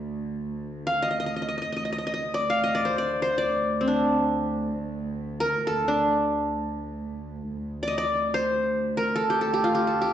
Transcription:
Already playing: D2 D5
0.87 F5
1.02 D#5
1.11 D#5
1.20 D#5
1.26 D#5
1.36 D#5
1.42 D#5
1.49 D#5
1.58 D#5
1.62 D#5
1.72 D2 D#5
1.76 D#5
1.85 D#5
1.93 D#5
1.98 D#5
2.07 D#5
2.14 D#5
2.34 D5
2.50 F5
2.64 D#5
2.75 D5
2.85 C5
2.98 D5
3.22 C5
3.38 D5
3.81 C4
3.88 D4
5.40 A#4
5.67 A4
5.88 D4
7.52 D2
7.83 D5
7.88 D#5
7.98 D5
8.34 C5
8.97 A#4
9.16 A4
9.30 G4
9.41 A4
9.54 G4
9.64 F4
9.75 G4
9.87 A4
10.01 G4

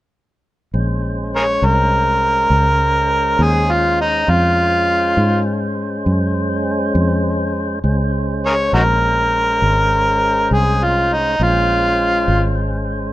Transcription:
0.74 A#1 G#3 C#4 C5
1.36 G#4 A#4 C#5
1.62 C2 A#4
2.50 C#2
3.39 D#2 G#4
3.71 F4
4.01 D#4
4.27 F2 G#3 C#4 F4 C5
5.17 G#2
6.06 F#2
6.95 F2
7.84 C#2 G#3 C#4 C5
8.46 G#4 A#4 C#5
8.73 A#1 D#4 F#4 A#4
9.62 G#1
10.51 C2 G#4
10.84 F4
11.13 D#4
11.40 A#1 G#3 C#4 F4 C5
12.28 G#1

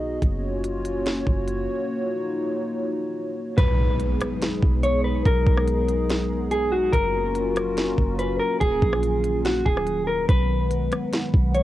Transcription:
Already playing: B1 B3 D#4 F#4 G#4 D#5
0.22 F#1 A#3 C#4 F4 F#4 C#5, kick, closed hi-hat
0.64 closed hi-hat
0.85 closed hi-hat
1.06 snare, closed hi-hat
1.27 F#1, kick
1.48 closed hi-hat
1.90 D#4 F4
3.58 B1 F#3 G#3 B3 D#4 G#4 B4, kick, closed hi-hat, impact
4.00 closed hi-hat
4.21 cross-stick, closed hi-hat
4.42 snare, closed hi-hat
4.62 B1, kick
4.83 C#5, closed hi-hat
5.04 B4
5.25 B1 A#4, kick, closed hi-hat
5.47 B1, kick
5.57 cross-stick
5.67 closed hi-hat
5.88 closed hi-hat
6.09 snare, closed hi-hat
6.51 G#4, closed hi-hat
6.72 F#4
6.93 F#1 F#3 A#3 C#4 F4 F#4 A#4, kick, closed hi-hat
7.35 closed hi-hat
7.56 cross-stick, closed hi-hat
7.77 snare, closed hi-hat
7.98 F#1, kick
8.19 B4, closed hi-hat
8.40 A#4
8.60 D#1 D#3 F4 G#4, kick, closed hi-hat
8.82 A#1, kick
8.93 cross-stick
9.03 closed hi-hat
9.24 closed hi-hat
9.45 F#4, snare, closed hi-hat
9.66 D#1 G#4, kick
9.77 cross-stick
9.87 closed hi-hat
10.07 A#4
10.29 B1 G#3 B3 B4 F#5, kick, closed hi-hat
10.71 closed hi-hat
10.92 cross-stick, closed hi-hat
11.13 snare, closed hi-hat
11.34 B1, kick
11.54 C#5, closed hi-hat

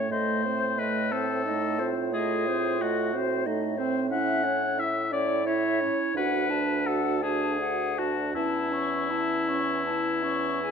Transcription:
Already playing: A3 C#4 C#5
0.10 A2 A3 C5 D#5
0.43 C4 C5
0.78 A3 B4 D#5
1.12 C4 A4 C5
1.45 A3 D#4 D#5
1.79 C4 F4 C5
2.14 A3 G#4 D#5
2.47 C4 C5
2.80 A3 F#4 D#5
3.13 C4 F#4 C5
3.46 A3 D#4 D#5
3.78 C4 C5
4.10 C#4 E4 E5 F#5
4.44 C#4 C#5
4.78 E4 E5
5.11 C#4 E4 C#5 D5
5.46 E4 C#5 E5
5.81 C#4 C#5
6.15 D2 D4 F#4 B4 F#5
6.50 D4 A5
6.85 F#4 A4 F#5
7.22 D4 F#4 G#4 A5
7.61 F#4 F#5
7.98 D4 F#4 A5
8.34 E2 C#4 E4 A5
8.73 C#4 C#6
9.11 E4 A5
9.48 C#4 C#6
9.86 E4 A5
10.23 C#4 C#6
10.62 G#4 G#5

